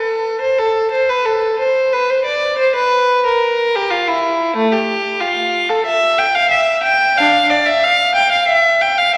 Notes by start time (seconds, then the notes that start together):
Already playing: A4
0.41 C5
0.58 A4
0.91 C5
1.09 B4
1.25 A4
1.59 C5
1.93 B4
2.10 C5
2.24 D5
2.58 C5
2.75 B4
3.26 A#4
3.75 G4
3.90 F4
4.08 E4
4.56 A3
4.72 G4
5.20 F4
5.69 A4
5.85 E5
6.18 G5
6.35 F5
6.50 E5
6.83 G5
7.17 D4 F5
7.50 D5
7.66 E5
7.83 F5
8.15 G5
8.32 F5
8.48 E5
8.81 G5
8.98 F5